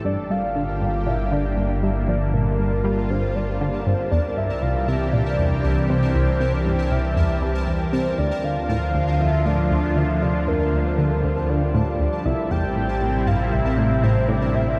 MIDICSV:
0, 0, Header, 1, 6, 480
1, 0, Start_track
1, 0, Key_signature, -1, "minor"
1, 0, Tempo, 508475
1, 46, Time_signature, 4, 2, 24, 8
1, 13965, End_track
2, 0, Start_track
2, 0, Title_t, "Synth texture"
2, 0, Program_c, 0, 99
2, 47, Note_on_c, 0, 81, 79
2, 48, Note_on_c, 0, 70, 79
2, 13965, Note_off_c, 0, 70, 0
2, 13965, Note_off_c, 0, 81, 0
2, 13965, End_track
3, 0, Start_track
3, 0, Title_t, "Soft synth lead"
3, 0, Program_c, 1, 80
3, 51, Note_on_c, 1, 74, 108
3, 290, Note_on_c, 1, 77, 117
3, 304, Note_off_c, 1, 74, 0
3, 1011, Note_on_c, 1, 76, 109
3, 1025, Note_off_c, 1, 77, 0
3, 1251, Note_on_c, 1, 74, 102
3, 1265, Note_off_c, 1, 76, 0
3, 1728, Note_on_c, 1, 76, 100
3, 1742, Note_off_c, 1, 74, 0
3, 1961, Note_off_c, 1, 76, 0
3, 1967, Note_on_c, 1, 74, 106
3, 2190, Note_off_c, 1, 74, 0
3, 2208, Note_on_c, 1, 70, 98
3, 2928, Note_on_c, 1, 72, 96
3, 2942, Note_off_c, 1, 70, 0
3, 3164, Note_on_c, 1, 74, 97
3, 3179, Note_off_c, 1, 72, 0
3, 3647, Note_on_c, 1, 72, 91
3, 3661, Note_off_c, 1, 74, 0
3, 3881, Note_off_c, 1, 72, 0
3, 3887, Note_on_c, 1, 74, 101
3, 4110, Note_off_c, 1, 74, 0
3, 4128, Note_on_c, 1, 76, 96
3, 4363, Note_on_c, 1, 77, 94
3, 4377, Note_off_c, 1, 76, 0
3, 4604, Note_on_c, 1, 76, 100
3, 4618, Note_off_c, 1, 77, 0
3, 4837, Note_off_c, 1, 76, 0
3, 4843, Note_on_c, 1, 74, 103
3, 5562, Note_on_c, 1, 72, 96
3, 5576, Note_off_c, 1, 74, 0
3, 6164, Note_on_c, 1, 74, 93
3, 6178, Note_off_c, 1, 72, 0
3, 6522, Note_on_c, 1, 76, 91
3, 6536, Note_off_c, 1, 74, 0
3, 7244, Note_off_c, 1, 76, 0
3, 7486, Note_on_c, 1, 72, 84
3, 7724, Note_on_c, 1, 74, 96
3, 7738, Note_off_c, 1, 72, 0
3, 7968, Note_on_c, 1, 77, 99
3, 7982, Note_off_c, 1, 74, 0
3, 8621, Note_off_c, 1, 77, 0
3, 8626, Note_on_c, 1, 77, 67
3, 8690, Note_on_c, 1, 76, 98
3, 8705, Note_off_c, 1, 77, 0
3, 8930, Note_on_c, 1, 74, 97
3, 8944, Note_off_c, 1, 76, 0
3, 9410, Note_on_c, 1, 76, 90
3, 9424, Note_off_c, 1, 74, 0
3, 9646, Note_off_c, 1, 76, 0
3, 9651, Note_on_c, 1, 74, 101
3, 9890, Note_on_c, 1, 70, 93
3, 9904, Note_off_c, 1, 74, 0
3, 10265, Note_on_c, 1, 72, 75
3, 10279, Note_off_c, 1, 70, 0
3, 10351, Note_on_c, 1, 70, 75
3, 10365, Note_off_c, 1, 72, 0
3, 10434, Note_on_c, 1, 69, 78
3, 10448, Note_off_c, 1, 70, 0
3, 10521, Note_on_c, 1, 70, 78
3, 10535, Note_off_c, 1, 69, 0
3, 10615, Note_on_c, 1, 72, 95
3, 10629, Note_off_c, 1, 70, 0
3, 10851, Note_on_c, 1, 74, 101
3, 10865, Note_off_c, 1, 72, 0
3, 11328, Note_off_c, 1, 74, 0
3, 11333, Note_on_c, 1, 74, 97
3, 11567, Note_on_c, 1, 76, 111
3, 11581, Note_off_c, 1, 74, 0
3, 11808, Note_on_c, 1, 79, 118
3, 11822, Note_off_c, 1, 76, 0
3, 12527, Note_on_c, 1, 77, 106
3, 12542, Note_off_c, 1, 79, 0
3, 12768, Note_on_c, 1, 76, 104
3, 12783, Note_off_c, 1, 77, 0
3, 13249, Note_on_c, 1, 72, 91
3, 13263, Note_off_c, 1, 76, 0
3, 13481, Note_off_c, 1, 72, 0
3, 13486, Note_on_c, 1, 74, 103
3, 13732, Note_on_c, 1, 76, 104
3, 13746, Note_off_c, 1, 74, 0
3, 13965, Note_off_c, 1, 76, 0
3, 13965, End_track
4, 0, Start_track
4, 0, Title_t, "Analog synth pad"
4, 0, Program_c, 2, 89
4, 43, Note_on_c, 2, 67, 89
4, 44, Note_on_c, 2, 50, 77
4, 45, Note_on_c, 2, 58, 72
4, 47, Note_on_c, 2, 55, 73
4, 1945, Note_off_c, 2, 67, 0
4, 1968, Note_on_c, 2, 65, 87
4, 3847, Note_off_c, 2, 50, 0
4, 3848, Note_off_c, 2, 58, 0
4, 3868, Note_off_c, 2, 65, 0
4, 3889, Note_on_c, 2, 60, 73
4, 3890, Note_on_c, 2, 52, 78
4, 3890, Note_on_c, 2, 67, 91
4, 7689, Note_off_c, 2, 55, 0
4, 7690, Note_off_c, 2, 52, 0
4, 7690, Note_off_c, 2, 60, 0
4, 7690, Note_off_c, 2, 67, 0
4, 7723, Note_on_c, 2, 53, 75
4, 7723, Note_on_c, 2, 65, 86
4, 7724, Note_on_c, 2, 50, 79
4, 9644, Note_on_c, 2, 55, 74
4, 11527, Note_off_c, 2, 50, 0
4, 11527, Note_off_c, 2, 53, 0
4, 11527, Note_off_c, 2, 65, 0
4, 11564, Note_on_c, 2, 64, 85
4, 11567, Note_on_c, 2, 48, 81
4, 11567, Note_on_c, 2, 60, 75
4, 13965, Note_off_c, 2, 48, 0
4, 13965, Note_off_c, 2, 55, 0
4, 13965, Note_off_c, 2, 60, 0
4, 13965, Note_off_c, 2, 64, 0
4, 13965, End_track
5, 0, Start_track
5, 0, Title_t, "Synth arpeggio sound"
5, 0, Program_c, 3, 84
5, 47, Note_on_c, 3, 43, 99
5, 168, Note_off_c, 3, 43, 0
5, 287, Note_on_c, 3, 55, 72
5, 408, Note_off_c, 3, 55, 0
5, 526, Note_on_c, 3, 50, 98
5, 599, Note_off_c, 3, 50, 0
5, 767, Note_on_c, 3, 43, 74
5, 839, Note_off_c, 3, 43, 0
5, 1005, Note_on_c, 3, 46, 95
5, 1078, Note_off_c, 3, 46, 0
5, 1244, Note_on_c, 3, 50, 98
5, 1366, Note_off_c, 3, 50, 0
5, 1486, Note_on_c, 3, 43, 71
5, 1607, Note_off_c, 3, 43, 0
5, 1725, Note_on_c, 3, 55, 71
5, 1798, Note_off_c, 3, 55, 0
5, 1965, Note_on_c, 3, 53, 80
5, 2038, Note_off_c, 3, 53, 0
5, 2206, Note_on_c, 3, 46, 70
5, 2327, Note_off_c, 3, 46, 0
5, 2446, Note_on_c, 3, 43, 71
5, 2567, Note_off_c, 3, 43, 0
5, 2684, Note_on_c, 3, 55, 101
5, 2807, Note_off_c, 3, 55, 0
5, 2925, Note_on_c, 3, 43, 101
5, 3047, Note_off_c, 3, 43, 0
5, 3167, Note_on_c, 3, 55, 73
5, 3288, Note_off_c, 3, 55, 0
5, 3406, Note_on_c, 3, 50, 100
5, 3479, Note_off_c, 3, 50, 0
5, 3646, Note_on_c, 3, 43, 72
5, 3719, Note_off_c, 3, 43, 0
5, 3885, Note_on_c, 3, 40, 99
5, 3958, Note_off_c, 3, 40, 0
5, 4125, Note_on_c, 3, 43, 95
5, 4247, Note_off_c, 3, 43, 0
5, 4366, Note_on_c, 3, 36, 75
5, 4487, Note_off_c, 3, 36, 0
5, 4605, Note_on_c, 3, 48, 74
5, 4678, Note_off_c, 3, 48, 0
5, 4846, Note_on_c, 3, 46, 76
5, 4919, Note_off_c, 3, 46, 0
5, 5085, Note_on_c, 3, 40, 72
5, 5207, Note_off_c, 3, 40, 0
5, 5327, Note_on_c, 3, 36, 72
5, 5448, Note_off_c, 3, 36, 0
5, 5566, Note_on_c, 3, 48, 101
5, 5687, Note_off_c, 3, 48, 0
5, 5805, Note_on_c, 3, 36, 98
5, 5927, Note_off_c, 3, 36, 0
5, 6043, Note_on_c, 3, 48, 73
5, 6166, Note_off_c, 3, 48, 0
5, 6284, Note_on_c, 3, 43, 100
5, 6358, Note_off_c, 3, 43, 0
5, 6525, Note_on_c, 3, 36, 75
5, 6598, Note_off_c, 3, 36, 0
5, 6765, Note_on_c, 3, 40, 101
5, 6838, Note_off_c, 3, 40, 0
5, 7005, Note_on_c, 3, 52, 100
5, 7078, Note_off_c, 3, 52, 0
5, 7242, Note_on_c, 3, 40, 74
5, 7426, Note_off_c, 3, 40, 0
5, 7484, Note_on_c, 3, 48, 98
5, 7606, Note_off_c, 3, 48, 0
5, 7725, Note_on_c, 3, 38, 100
5, 7847, Note_off_c, 3, 38, 0
5, 7965, Note_on_c, 3, 50, 75
5, 8087, Note_off_c, 3, 50, 0
5, 8204, Note_on_c, 3, 45, 100
5, 8278, Note_off_c, 3, 45, 0
5, 8445, Note_on_c, 3, 38, 72
5, 8518, Note_off_c, 3, 38, 0
5, 8685, Note_on_c, 3, 41, 101
5, 8758, Note_off_c, 3, 41, 0
5, 8925, Note_on_c, 3, 45, 99
5, 9047, Note_off_c, 3, 45, 0
5, 9165, Note_on_c, 3, 38, 73
5, 9287, Note_off_c, 3, 38, 0
5, 9405, Note_on_c, 3, 50, 72
5, 9478, Note_off_c, 3, 50, 0
5, 9646, Note_on_c, 3, 48, 79
5, 9719, Note_off_c, 3, 48, 0
5, 9887, Note_on_c, 3, 41, 75
5, 10008, Note_off_c, 3, 41, 0
5, 10127, Note_on_c, 3, 38, 75
5, 10248, Note_off_c, 3, 38, 0
5, 10367, Note_on_c, 3, 50, 99
5, 10488, Note_off_c, 3, 50, 0
5, 10607, Note_on_c, 3, 38, 98
5, 10728, Note_off_c, 3, 38, 0
5, 10847, Note_on_c, 3, 50, 76
5, 10968, Note_off_c, 3, 50, 0
5, 11086, Note_on_c, 3, 45, 99
5, 11159, Note_off_c, 3, 45, 0
5, 11325, Note_on_c, 3, 38, 76
5, 11399, Note_off_c, 3, 38, 0
5, 11566, Note_on_c, 3, 36, 102
5, 11639, Note_off_c, 3, 36, 0
5, 11806, Note_on_c, 3, 40, 99
5, 11927, Note_off_c, 3, 40, 0
5, 12046, Note_on_c, 3, 45, 74
5, 12167, Note_off_c, 3, 45, 0
5, 12285, Note_on_c, 3, 45, 72
5, 12358, Note_off_c, 3, 45, 0
5, 12525, Note_on_c, 3, 43, 81
5, 12598, Note_off_c, 3, 43, 0
5, 12765, Note_on_c, 3, 36, 77
5, 12887, Note_off_c, 3, 36, 0
5, 13007, Note_on_c, 3, 45, 74
5, 13128, Note_off_c, 3, 45, 0
5, 13244, Note_on_c, 3, 45, 98
5, 13367, Note_off_c, 3, 45, 0
5, 13485, Note_on_c, 3, 45, 100
5, 13607, Note_off_c, 3, 45, 0
5, 13725, Note_on_c, 3, 45, 70
5, 13847, Note_off_c, 3, 45, 0
5, 13965, End_track
6, 0, Start_track
6, 0, Title_t, "Analog synth bass"
6, 0, Program_c, 4, 38
6, 44, Note_on_c, 4, 31, 87
6, 3861, Note_off_c, 4, 31, 0
6, 3884, Note_on_c, 4, 36, 86
6, 7701, Note_off_c, 4, 36, 0
6, 7725, Note_on_c, 4, 38, 89
6, 11541, Note_off_c, 4, 38, 0
6, 11564, Note_on_c, 4, 33, 88
6, 13965, Note_off_c, 4, 33, 0
6, 13965, End_track
0, 0, End_of_file